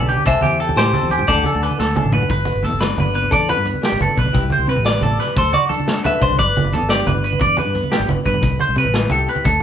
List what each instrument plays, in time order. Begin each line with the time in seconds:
Already playing: clean electric guitar B3 D4 B4 D5
0.00 fingered electric bass B1
0.09 clean electric guitar B2 G4, closed hi-hat
0.17 low conga
0.24 fingered electric bass C2, clean electric guitar C3 A4 C5 E5, kick, closed hi-hat, high conga, low agogo
0.34 low conga
0.41 fingered electric bass E2, clean electric guitar E4 G4, closed hi-hat, low conga, low agogo
0.60 clean electric guitar G4 A4, closed hi-hat
0.69 high conga, low conga
0.76 fingered electric bass A2, clean electric guitar G3 G4 C5, snare, closed hi-hat, low agogo
0.86 low conga
0.93 clean electric guitar C4 A4, closed hi-hat, low conga
1.03 fingered electric bass E2
1.10 clean electric guitar E4 G4, closed hi-hat, high conga, low conga, low agogo
1.19 fingered electric bass G2, low conga
1.28 fingered electric bass D2, clean electric guitar D3 F#3 D4 F#4 A4 D5, kick, closed hi-hat
1.36 low conga
1.43 clean electric guitar F#4 A4, closed hi-hat, low conga, low agogo
1.52 fingered electric bass D2, high conga
1.63 clean electric guitar A4 B4, closed hi-hat, low agogo
1.70 low conga
1.79 fingered electric bass D2, clean electric guitar F#3 A4, snare
1.96 clean electric guitar D4, mid tom, high conga, low conga, low agogo
2.05 fingered electric bass A1
2.12 clean electric guitar F#4 B4, floor tom
2.22 low conga
2.29 fingered electric bass G1, clean electric guitar G2 B4, kick, closed hi-hat, high conga
2.38 low conga
2.45 closed hi-hat, low conga
2.55 fingered electric bass G1
2.63 fingered electric bass E2, clean electric guitar B3 A4, closed hi-hat, high conga, low conga
2.73 fingered electric bass G1, low conga
2.81 clean electric guitar G3 D4 B4, snare, closed hi-hat
2.98 fingered electric bass G1, clean electric guitar D4 B4, closed hi-hat, high conga, low conga
3.14 clean electric guitar B3 B4, closed hi-hat
3.23 low conga
3.31 fingered electric bass E2, clean electric guitar G2 A4 D5, kick, closed hi-hat, high conga
3.49 clean electric guitar B4, closed hi-hat, low conga
3.58 fingered electric bass G2
3.66 clean electric guitar B3, closed hi-hat, high conga, low conga
3.74 low conga
3.81 clean electric guitar G3 D4 G4, snare, closed hi-hat
3.92 fingered electric bass G1
3.99 fingered electric bass G1, clean electric guitar A4 B4, closed hi-hat, high conga, low conga
4.15 fingered electric bass B1, clean electric guitar B3 B4, kick, closed hi-hat
4.25 low conga
4.31 fingered electric bass C2, clean electric guitar C3 C4 E4 G4, muted clean electric guitar stroke, kick, closed hi-hat, high conga
4.43 low conga
4.50 clean electric guitar C5, closed hi-hat, low conga
4.58 fingered electric bass C2
4.67 fingered electric bass C3, clean electric guitar C4 B4, closed hi-hat, high conga, low conga
4.76 fingered electric bass A1, low conga
4.83 clean electric guitar A2 D5, snare, closed hi-hat
5.00 fingered electric bass A1, clean electric guitar B2 A4, closed hi-hat, high conga, low conga
5.18 clean electric guitar C3 B4, snare, closed hi-hat
5.35 fingered electric bass D2, clean electric guitar D3 A4 C5, kick, closed hi-hat, high conga
5.53 clean electric guitar F#4 D5, closed hi-hat, low conga
5.69 clean electric guitar D4 A4, closed hi-hat, high conga
5.80 low conga
5.86 clean electric guitar F#3 F#4, snare, closed hi-hat
6.04 clean electric guitar A4 B4 E5, closed hi-hat, high conga, low conga
6.20 fingered electric bass C2, clean electric guitar D4 C5, kick, closed hi-hat
6.31 low conga
6.38 fingered electric bass G1, clean electric guitar G2 B4 D5, kick, closed hi-hat, high conga
6.56 closed hi-hat, low conga
6.64 fingered electric bass G1
6.72 fingered electric bass E2, clean electric guitar B3 A4, closed hi-hat, high conga, low conga
6.81 fingered electric bass G1
6.89 clean electric guitar G3 D4 G4 D5, snare, closed hi-hat
7.07 fingered electric bass G1, clean electric guitar B4, closed hi-hat, high conga, low conga
7.24 clean electric guitar B4, muted clean electric guitar stroke, closed hi-hat
7.33 low conga
7.39 fingered electric bass E2, clean electric guitar G2 D5, kick, closed hi-hat, high conga
7.57 clean electric guitar B4, closed hi-hat, low conga
7.66 fingered electric bass G2
7.74 clean electric guitar B3, closed hi-hat, high conga, low conga
7.84 low conga
7.91 clean electric guitar G3 D4 G4, snare, closed hi-hat
8.00 fingered electric bass G1
8.09 fingered electric bass G1, clean electric guitar B4, closed hi-hat, high conga, low conga
8.26 fingered electric bass G2, clean electric guitar B3 B4, kick, closed hi-hat
8.34 low conga
8.42 fingered electric bass C2, clean electric guitar C3, kick, closed hi-hat, high conga
8.59 clean electric guitar C5, closed hi-hat, low conga
8.69 fingered electric bass C2, low conga
8.76 fingered electric bass C3, clean electric guitar C4 B4, closed hi-hat, high conga
8.84 fingered electric bass A1, low conga
8.93 clean electric guitar G3 E4, snare, closed hi-hat
9.10 fingered electric bass C2, clean electric guitar G4 A4, closed hi-hat, high conga, low conga
9.19 low conga
9.28 clean electric guitar C4 B4, closed hi-hat
9.36 low conga
9.44 fingered electric bass D2, clean electric guitar D3 A4, kick, closed hi-hat, high conga